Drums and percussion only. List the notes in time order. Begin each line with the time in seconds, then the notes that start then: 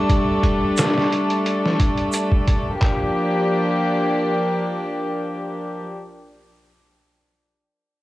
0.09 kick, closed hi-hat
0.43 kick, closed hi-hat
0.77 snare, closed hi-hat, shaker
0.98 snare
1.12 closed hi-hat
1.30 closed hi-hat
1.46 closed hi-hat
1.66 snare
1.80 kick, closed hi-hat
1.98 closed hi-hat
2.12 closed hi-hat, shaker
2.32 kick
2.48 kick, closed hi-hat
2.82 kick, clap